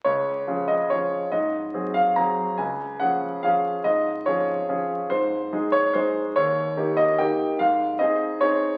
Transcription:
\new Staff \with { instrumentName = "Grand piano" } { \time 3/4 \key des \major \tempo 4 = 144 << { des''4. ees''8 des''4 | ees''4. f''8 bes''4 | aes''4 ges''4 f''4 | ees''4 des''4. r8 |
c''4. des''8 c''4 | des''4. ees''8 g''4 | f''4 ees''4 des''4 | } \\ { des,4 <f des' aes'>4 <f des' aes'>4 | aes,4 <ges c' aes'>4 <ges c' aes'>4 | des,4 <f des' aes'>4 <f des' aes'>4 | aes,4 <f des' aes'>4 <f des' aes'>4 |
aes,4 <aes ees' aes'>4 <aes ees' aes'>4 | ees,4 <bes ees' g'>4 <bes ees' g'>4 | aes,4 <c' ees' aes'>4 <c' ees' aes'>4 | } >> }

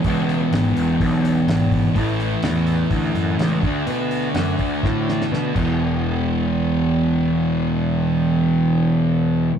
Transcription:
<<
  \new Staff \with { instrumentName = "Distorted electric guitar" } { \clef bass \time 4/4 \key d \lydian \tempo 4 = 125 <e, b, e>1 | <a, e a>2.~ <a, e a>8 <d a d'>8~ | <d a d'>2.~ <d a d'>8 <e, b, e>8~ | <e, b, e>1~ |
<e, b, e>1 | }
  \new Staff \with { instrumentName = "Picked electric bass" } { \clef bass \time 4/4 \key d \lydian cis,4 gis,,8 e,,8 b,,4 gis,,4 | a,,4 e,4 d,8 fis,8 cis,8 d,8 | b,4 fis,8 d,8 a,4 b,8 e,,8~ | e,,1~ |
e,,1 | }
  \new DrumStaff \with { instrumentName = "Drums" } \drummode { \time 4/4 <hho bd>8 hho8 <hho sn>8 hho8 <hho bd>8 hho8 <hho sn>8 <hho bd>8 | <hho bd>8 hho8 <hho sn>8 hho8 <hho bd>8 hho8 <hho sn>8 <hho bd>8 | hho8 hho8 <hho sn>8 <hho bd>8 <bd sn>8 sn16 sn16 sn8 <cymc bd>8 | r4 r4 r4 r4 |
r4 r4 r4 r4 | }
>>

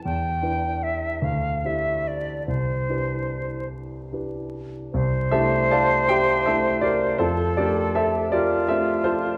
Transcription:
<<
  \new Staff \with { instrumentName = "Flute" } { \time 6/8 \key c \major \tempo 4. = 51 g''4 e''8 f''8 e''8 d''8 | c''4. r4. | c''2. | a'4. f'4. | }
  \new Staff \with { instrumentName = "Grand piano" } { \time 6/8 \key c \major << { r2. | r2. | r8 <a' c'' e''>8 <a' d'' f'' a''>8 <g' c'' e'' g''>8 <a' c'' e''>8 <g' bes' d''>8 | <f' a' c''>8 <g' bes' d''>8 <a' c'' e''>8 <g' bes' d''>8 <a' c'' e''>8 <f' a' c''>8 | } \\ { e,8 <d' e' b'>4 d,8 <d' e' g' c''>4 | c,8 <d' e' g' b'>4. <d' e' g' b'>4 | c,8 <a d' e' g'>4. <a d' e' g'>4 | f,8 <a c' d'>4. <a c' d' g'>4 | } >> }
>>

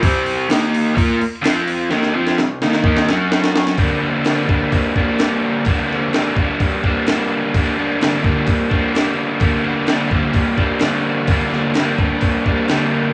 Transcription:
<<
  \new Staff \with { instrumentName = "Overdriven electric guitar" } { \time 4/4 \key g \minor \tempo 4 = 128 <c g c'>4 <ees bes ees'>4 <bes f' bes'>8 r8 <f c' f'>4 | <ees bes ees'>8 <f c' f'>8 <c g>8 <ees bes ees'>8 <ees bes ees'>8 <fis cis' fis'>4. | <g, d g bes d'>8 <g bes d'>8 <g, d g bes d'>8 <g bes d'>4 <g bes d'>8 <d g bes d'>4 | <g, d g bes d'>8 <g bes d'>8 <g, d g bes d'>8 <g bes d'>4 <g bes d'>8 <d g bes d'>4 |
<g, d g bes d'>8 <g bes d'>8 <g, d g bes d'>8 <g bes d'>4 <g bes d'>8 <d g bes d'>4 | <g, d g bes d'>8 <g bes d'>8 <g, d g bes d'>8 <g bes d'>4 <g bes d'>8 <d g bes d'>4 | <g, d g bes d'>8 <g bes d'>8 <g, d g bes d'>8 <g bes d'>4 <g bes d'>8 <d g bes d'>4 | }
  \new DrumStaff \with { instrumentName = "Drums" } \drummode { \time 4/4 <cymc bd>8 cymc8 <cymc sn>8 cymc8 <cymc bd>8 cymc8 <cymc sn>8 cymc8 | sn16 sn8 sn16 sn8 sn16 sn16 bd16 sn16 sn8 sn16 sn16 sn16 sn16 | <hho bd>4 <hho sn>8 bd8 <hho bd>8 bd8 <hho sn>4 | <hho bd>8 sn8 <hho sn>8 bd8 <hho bd>8 bd8 <hho sn>4 |
<hho bd>4 <hho sn>8 bd8 <hho bd>8 bd8 <hho sn>4 | <hho bd>4 <hho sn>8 bd8 <hho bd>8 bd8 <hho sn>4 | <hho bd>8 sn8 <hho sn>8 bd8 <hho bd>8 bd8 <hho sn>4 | }
>>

